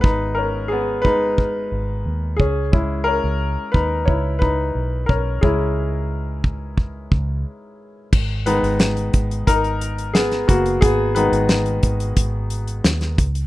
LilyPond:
<<
  \new Staff \with { instrumentName = "Grand piano" } { \time 4/4 \key gis \minor \tempo 4 = 89 <dis' b'>8 <cis' ais'>8 <b gis'>8 b'2 <cis' gis'>8~ | <cis' gis'>8 <cis' ais'>4 <dis' b'>8 <e' cis''>8 <dis' b'>4 <cis' ais'>8 | gis'4. r2 r8 | r8 <dis' b'>4. <dis' ais'>4 <b gis'>8 <ais fis'>8 |
<b gis'>8 <dis' b'>2 r4. | }
  \new Staff \with { instrumentName = "Grand piano" } { \time 4/4 \key gis \minor r4. <gis b dis'>2 r8 | <gis cis' e'>1 | <gis cis' e'>1 | r8 <dis gis b>2.~ <dis gis b>8~ |
<dis gis b>8 <dis gis b>4. r2 | }
  \new Staff \with { instrumentName = "Fingered electric bass" } { \clef bass \time 4/4 \key gis \minor gis,,2~ gis,,8 gis,,8 dis,8 cis,8~ | cis,8. cis,8 r16 dis,8 cis,4 b,,8 b,,8 | cis,2~ cis,8 cis,8 r4 | gis,,8. gis,,8. gis,,8 gis,,4. fis,,8 |
gis,,8. gis,,8. gis,,8 gis,,4 dis,8 cis,8 | }
  \new DrumStaff \with { instrumentName = "Drums" } \drummode { \time 4/4 bd4 r8 bd8 bd4 r8 bd8 | bd4 r8 bd8 bd8 bd8 r8 bd8 | bd4 r8 bd8 bd8 bd8 r4 | <cymc bd>8 hh16 hh16 <hh sn>16 hh16 <hh bd>16 hh16 <hh bd>16 hh16 hh16 hh16 <hh sn>16 <hh sn>16 <hh bd>16 hh16 |
<hh bd>8 hh16 hh16 <hh sn>16 hh16 <hh bd>16 hh16 <hh bd>8 hh16 hh16 <hh sn>16 <hh sn>16 <hh bd>16 hh16 | }
>>